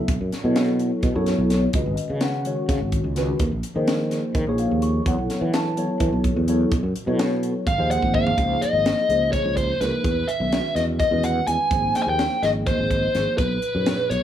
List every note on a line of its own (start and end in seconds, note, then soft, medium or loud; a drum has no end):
0.08 0.18 B1 loud
0.08 kick loud
0.08 closed hi-hat medium
0.21 0.30 F#2 medium
0.32 snare soft
0.32 closed hi-hat medium
0.43 0.90 B2 medium
0.43 1.08 F#3 medium
0.43 1.09 B3 medium
0.43 1.09 E4 medium
0.43 1.09 A4 medium
0.43 1.10 C#5 medium
0.56 snare loud
0.56 closed hi-hat medium
0.80 closed hi-hat medium
1.03 1.12 B2 medium
1.03 kick loud
1.03 closed hi-hat medium
1.14 1.34 F#2 medium
1.14 1.69 F#3 medium
1.14 1.69 B3 medium
1.14 1.69 E4 medium
1.14 1.69 A4 medium
1.14 1.69 C#5 loud
1.26 snare soft
1.26 closed hi-hat medium
1.38 1.66 B1 medium
1.50 snare soft
1.50 closed hi-hat medium
1.73 1.83 C#2 loud
1.73 2.39 D#3 medium
1.73 2.39 G#3 medium
1.73 2.39 C#4 medium
1.73 2.39 F#4 medium
1.73 2.40 B4 medium
1.73 2.19 D#5 medium
1.73 kick loud
1.73 closed hi-hat medium
1.86 1.95 G#1 medium
1.97 closed hi-hat medium
2.10 2.55 C#3 medium
2.21 2.90 F#5 medium
2.21 snare loud
2.21 closed hi-hat medium
2.45 3.10 D#3 medium
2.45 3.10 G#3 medium
2.45 3.10 C#4 medium
2.45 3.11 F#4 medium
2.45 3.11 C#5 medium
2.45 closed hi-hat medium
2.69 2.78 C#3 medium
2.69 kick loud
2.69 snare soft
2.69 closed hi-hat medium
2.81 2.99 G#1 medium
2.92 kick medium
2.92 closed hi-hat medium
3.04 3.32 C#2 medium
3.15 3.40 D#3 medium
3.15 3.40 G#3 medium
3.15 3.40 C#4 medium
3.15 3.40 F#4 medium
3.15 3.41 B4 medium
3.15 snare soft
3.15 closed hi-hat medium
3.39 3.49 D#2 loud
3.39 kick loud
3.39 closed hi-hat medium
3.51 3.61 A#1 medium
3.63 closed hi-hat medium
3.74 4.21 D#3 medium
3.74 4.40 F3 medium
3.74 4.40 A#3 medium
3.74 4.40 D#4 medium
3.74 4.40 G#4 medium
3.74 4.41 C5 medium
3.88 snare loud
3.88 closed hi-hat medium
4.11 snare soft
4.11 closed hi-hat medium
4.35 4.44 D#3 medium
4.35 kick loud
4.35 closed hi-hat medium
4.47 4.65 A#1 medium
4.47 5.01 F3 loud
4.47 5.01 A#3 medium
4.47 5.01 D#4 medium
4.47 5.01 G#4 medium
4.47 5.02 C#5 loud
4.58 4.81 F5 medium
4.58 closed hi-hat medium
4.71 4.98 D#2 medium
4.82 5.04 C#6 medium
4.82 closed hi-hat medium
5.05 5.15 E2 loud
5.05 5.70 F#3 medium
5.05 5.71 B3 medium
5.05 5.71 E4 medium
5.05 5.71 A4 medium
5.05 5.71 C#5 medium
5.05 5.51 F#5 medium
5.05 kick loud
5.05 closed hi-hat medium
5.18 5.27 B1 medium
5.30 snare soft
5.30 closed hi-hat medium
5.41 5.87 E3 medium
5.54 6.21 A5 medium
5.54 snare loud
5.54 closed hi-hat medium
5.76 6.41 F#3 medium
5.76 6.42 B3 medium
5.76 6.42 E4 medium
5.76 6.42 A4 medium
5.76 6.42 C#5 medium
5.76 closed hi-hat medium
6.00 6.10 E3 loud
6.00 kick loud
6.00 closed hi-hat medium
6.12 6.31 B1 medium
6.24 kick medium
6.24 closed hi-hat medium
6.36 6.64 E2 medium
6.48 6.72 F#3 medium
6.48 6.72 B3 medium
6.48 6.72 E4 medium
6.48 6.72 A4 medium
6.48 6.72 C#5 medium
6.48 closed hi-hat medium
6.72 6.81 B1 loud
6.72 kick loud
6.72 closed hi-hat medium
6.83 6.92 F#2 medium
6.96 closed hi-hat medium
7.06 7.53 B2 medium
7.06 7.66 F#3 medium
7.06 7.66 B3 medium
7.06 7.66 E4 medium
7.06 7.67 A4 medium
7.06 7.67 C#5 loud
7.19 snare loud
7.19 closed hi-hat medium
7.43 closed hi-hat medium
7.67 7.76 G#1 medium
7.67 7.91 F5 medium
7.67 kick loud
7.67 closed hi-hat medium
7.78 7.97 D#2 medium
7.78 8.32 F3 loud
7.78 8.32 A#3 medium
7.78 8.32 D#4 medium
7.78 8.33 G#4 medium
7.78 8.33 C5 loud
7.91 8.15 F#5 medium
7.91 closed hi-hat medium
8.02 8.30 G#1 medium
8.02 kick medium
8.14 8.63 F5 loud
8.14 kick medium
8.27 floor tom loud
8.38 8.56 C#2 loud
8.38 9.03 F3 medium
8.38 9.03 A#3 medium
8.38 9.03 D#4 medium
8.38 9.03 G#4 medium
8.38 9.04 C5 medium
8.38 kick loud
8.38 closed hi-hat medium
8.62 9.32 D#5 medium
8.62 closed hi-hat medium
8.73 8.91 G#1 medium
8.86 snare medium
8.86 closed hi-hat medium
9.09 9.36 C#2 medium
9.09 9.74 F3 medium
9.09 9.74 A#3 medium
9.09 9.75 D#4 medium
9.09 9.75 G#4 medium
9.09 9.75 C5 medium
9.09 closed hi-hat medium
9.32 9.56 C#5 medium
9.32 kick medium
9.32 closed hi-hat medium
9.44 9.72 C#2 medium
9.57 9.79 C5 medium
9.57 kick medium
9.57 closed hi-hat medium
9.80 9.90 C#2 medium
9.80 10.04 F3 medium
9.80 10.04 A#3 medium
9.80 10.05 D#4 medium
9.80 10.05 G#4 medium
9.80 10.05 A#4 medium
9.80 10.30 B4 medium
9.80 snare soft
9.80 closed hi-hat medium
10.04 10.23 E2 medium
10.04 kick loud
10.04 closed hi-hat medium
10.28 10.76 E5 medium
10.28 closed hi-hat medium
10.39 10.58 B1 medium
10.39 11.05 D#3 medium
10.39 11.05 G#3 medium
10.39 11.05 C#4 medium
10.39 11.06 F#4 medium
10.39 11.06 B4 medium
10.52 snare loud
10.52 closed hi-hat medium
10.75 11.03 E2 medium
10.75 10.83 D#5 medium
10.75 snare soft
10.75 closed hi-hat medium
11.00 11.24 D#5 medium
11.00 kick medium
11.00 closed hi-hat medium
11.11 11.39 E2 medium
11.11 11.66 D#3 medium
11.11 11.66 G#3 medium
11.11 11.66 C#4 medium
11.11 11.66 F#4 medium
11.11 11.67 B4 medium
11.23 11.47 F#5 medium
11.23 closed hi-hat medium
11.47 11.56 E2 medium
11.47 11.96 G#5 loud
11.47 closed hi-hat medium
11.71 11.89 G#1 medium
11.71 12.36 F3 medium
11.71 12.36 A#3 medium
11.71 12.37 D#4 medium
11.71 12.37 G#4 medium
11.71 12.37 C5 medium
11.71 kick loud
11.71 closed hi-hat medium
11.95 12.02 G5 loud
11.95 snare soft
11.95 closed hi-hat medium
12.03 12.09 G#5 medium
12.07 12.25 D#2 medium
12.07 12.44 G5 loud
12.19 snare medium
12.19 closed hi-hat medium
12.42 12.70 G#1 medium
12.42 13.08 F3 medium
12.42 13.08 A#3 medium
12.42 13.08 D#4 medium
12.42 13.09 G#4 medium
12.42 12.49 D#5 medium
12.42 13.09 D#5 medium
12.42 snare soft
12.42 closed hi-hat medium
12.67 13.35 C5 medium
12.67 kick medium
12.67 closed hi-hat medium
12.79 13.06 G#1 medium
12.91 kick medium
12.91 closed hi-hat medium
13.14 13.24 G#1 medium
13.14 13.38 F3 medium
13.14 13.38 A#3 medium
13.14 13.39 D#4 medium
13.14 13.39 G#4 medium
13.14 13.39 C5 medium
13.14 snare soft
13.14 closed hi-hat medium
13.38 13.57 B1 loud
13.38 14.12 B4 medium
13.38 kick loud
13.38 closed hi-hat medium
13.62 closed hi-hat medium
13.74 13.93 F#2 medium
13.74 14.23 A#2 medium
13.74 14.23 F3 medium
13.74 14.23 D#4 medium
13.74 14.23 G#4 medium
13.74 14.23 C#5 medium
13.86 snare loud
13.86 closed hi-hat medium
14.10 14.23 B1 medium
14.10 14.23 C#5 medium
14.10 closed hi-hat medium